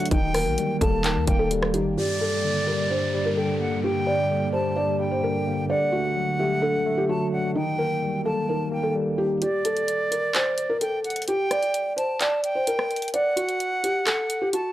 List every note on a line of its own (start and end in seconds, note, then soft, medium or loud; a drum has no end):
0.00 0.10 D3 loud
0.00 0.13 D3 loud
0.00 0.13 F#3 medium
0.00 0.14 A3 medium
0.00 0.11 D4 medium
0.00 0.10 F#5 medium
0.06 closed hi-hat medium
0.11 0.48 D#1 loud
0.11 1.03 D#3 medium
0.11 1.96 D#3 medium
0.11 1.96 G3 medium
0.11 1.96 A#3 medium
0.11 0.30 D#4 medium
0.11 1.96 G4 medium
0.11 0.77 G5 loud
0.11 kick loud
0.11 closed hi-hat medium
0.34 0.80 A#3 medium
0.34 0.78 A#4 medium
0.34 cross-stick medium
0.34 open hi-hat medium
0.46 0.57 A#1 loud
0.58 1.50 G3 medium
0.58 closed hi-hat medium
0.81 1.18 D#1 loud
0.81 1.26 A#3 medium
0.81 1.00 A4 medium
0.81 1.25 A5 medium
0.81 kick loud
0.81 closed hi-hat medium
1.04 1.97 D#3 medium
1.04 1.37 A#4 medium
1.04 clap loud
1.04 closed hi-hat medium
1.16 1.27 D#2 loud
1.27 1.76 D#1 loud
1.27 1.97 A#3 medium
1.27 1.50 G5 medium
1.27 kick loud
1.27 closed hi-hat medium
1.39 1.72 A4 medium
1.51 1.98 G3 medium
1.51 closed hi-hat medium
1.63 cross-stick loud
1.74 1.96 F#1 loud
1.74 1.97 D#4 medium
1.74 1.92 G4 medium
1.74 closed hi-hat medium
1.97 2.89 G2 medium
1.97 7.52 D3 medium
1.97 5.66 G3 medium
1.97 5.66 A#3 medium
1.97 5.66 G4 medium
1.97 2.16 G4 medium
1.97 3.33 D5 loud
1.97 downlifter medium
2.21 2.66 G3 medium
2.21 2.65 A4 medium
2.44 3.36 D3 medium
2.67 3.12 G3 medium
2.67 2.86 A#4 medium
2.90 3.82 G2 medium
2.90 3.23 C5 medium
3.14 4.05 G3 medium
3.26 3.35 A#4 medium
3.37 4.29 D3 medium
3.37 3.81 A4 medium
3.37 3.59 G5 medium
3.60 4.77 A#3 medium
3.60 3.82 F#5 medium
3.83 4.75 G2 medium
3.83 4.02 G4 medium
3.83 4.49 G5 loud
4.06 4.52 G3 medium
4.06 4.51 D5 medium
4.30 5.22 D3 medium
4.52 4.98 G3 medium
4.52 4.71 C5 medium
4.52 4.97 A5 medium
4.76 5.69 G2 medium
4.76 5.09 D5 medium
5.00 5.69 G3 medium
5.00 5.65 G5 medium
5.11 5.21 C5 medium
5.23 5.69 D3 medium
5.23 5.67 A#4 medium
5.46 5.70 A#3 medium
5.69 6.61 D3 medium
5.69 7.54 F#3 medium
5.69 7.54 A3 medium
5.69 7.54 F#4 medium
5.69 5.88 D5 medium
5.69 7.05 F#5 loud
5.92 6.38 A3 medium
5.92 6.36 F#4 medium
6.16 7.08 F#3 medium
6.39 6.85 A3 medium
6.39 6.58 G4 medium
6.62 7.56 D3 loud
6.62 6.95 A4 medium
6.86 7.56 A3 medium
6.97 7.07 G4 medium
7.09 7.56 F#3 medium
7.09 7.53 F#4 medium
7.09 7.31 A5 medium
7.32 7.56 D4 medium
7.32 7.54 F#5 medium
7.55 9.40 D#3 medium
7.55 8.47 D#3 medium
7.55 9.40 G3 medium
7.55 9.40 A#3 medium
7.55 7.74 D#4 medium
7.55 9.40 G4 medium
7.55 8.21 G5 loud
7.78 8.24 A#3 medium
7.78 8.22 A#4 medium
8.02 8.94 G3 medium
8.25 8.71 A#3 medium
8.25 8.44 A4 medium
8.25 8.69 A5 medium
8.49 9.42 D#3 medium
8.49 8.82 A#4 medium
8.72 9.42 A#3 medium
8.72 8.94 G5 medium
8.83 9.16 A4 medium
8.95 9.42 G3 medium
9.18 9.41 D#4 medium
9.18 9.37 G4 medium
9.42 9.60 G4 medium
9.42 10.77 D5 loud
9.42 closed hi-hat medium
9.65 10.09 A4 medium
9.65 closed hi-hat medium
9.77 closed hi-hat soft
9.88 closed hi-hat medium
10.11 10.30 A#4 medium
10.11 closed hi-hat medium
10.34 10.67 C5 medium
10.34 clap loud
10.34 closed hi-hat medium
10.58 closed hi-hat medium
10.70 10.79 A#4 medium
10.81 11.25 A4 medium
10.81 11.03 G5 medium
10.81 closed hi-hat medium
11.04 11.27 F#5 medium
11.04 closed hi-hat soft
11.10 closed hi-hat soft
11.16 closed hi-hat medium
11.22 closed hi-hat medium
11.28 11.47 G4 medium
11.28 11.93 G5 loud
11.28 closed hi-hat medium
11.51 11.95 D5 medium
11.51 cross-stick medium
11.51 closed hi-hat medium
11.63 closed hi-hat soft
11.74 closed hi-hat medium
11.96 12.15 C5 medium
11.96 12.41 A5 medium
11.96 closed hi-hat medium
12.21 12.53 D5 medium
12.21 clap loud
12.21 closed hi-hat medium
12.44 13.10 G5 medium
12.44 closed hi-hat medium
12.55 12.65 C5 medium
12.67 13.11 A#4 medium
12.67 closed hi-hat medium
12.79 cross-stick medium
12.91 closed hi-hat soft
12.96 closed hi-hat soft
13.02 closed hi-hat medium
13.08 closed hi-hat medium
13.14 13.32 D5 medium
13.14 14.49 F#5 loud
13.14 closed hi-hat medium
13.36 13.80 F#4 medium
13.36 closed hi-hat medium
13.49 closed hi-hat soft
13.60 closed hi-hat medium
13.84 14.02 G4 medium
13.84 closed hi-hat medium
14.06 14.39 A4 medium
14.06 clap loud
14.06 closed hi-hat medium
14.30 closed hi-hat medium
14.42 14.51 G4 medium
14.53 14.72 F#4 medium
14.53 14.72 A5 medium
14.53 closed hi-hat medium